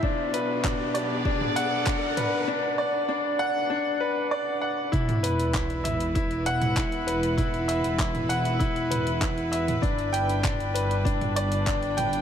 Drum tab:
HH |--x---x---x---x-|----------------|xxxxxxxxxxxxxxxx|xxxxxxxxxxxxxxxx|
CP |----x-------x---|----------------|----x-------x---|----x-------x---|
T2 |----o----o----o-|----------------|-o----o----o----|o----o----o----o|
BD |o---o---o---o---|----------------|o---o---o---o---|o---o---o---o---|

HH |xxxxxxxxxxxxxxxx|
CP |----x-------x---|
T2 |----o----o----o-|
BD |o---o---o---o---|